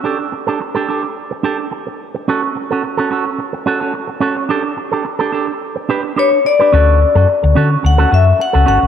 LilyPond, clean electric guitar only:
\new Staff \with { instrumentName = "Clean electric guitar" } { \time 4/4 \key d \major \tempo 4 = 108 <d' g' a'>8 r16 <d' g' a'>16 r16 <d' g' a'>16 <d' g' a'>16 r8. <d' g' a'>8 r4 | <cis' fis' a'>8 r16 <cis' fis' a'>16 r16 <cis' fis' a'>16 <cis' fis' a'>16 r8. <cis' fis' a'>16 <cis' fis' a'>16 r8 <cis' fis' a'>8 | <d' g' a'>8 r16 <d' g' a'>16 r16 <d' g' a'>16 <d' g' a'>16 r8. <d' g' b'>8 <d' g' b'>8 r16 <d' g' b'>16 | <cis' fis' a'>8 r16 <cis' fis' a'>16 r8 <cis' fis' a'>8 r16 <cis' fis' a'>16 <cis' fis' a'>16 r8 <cis' fis' a'>16 <cis' fis' a'>8 | }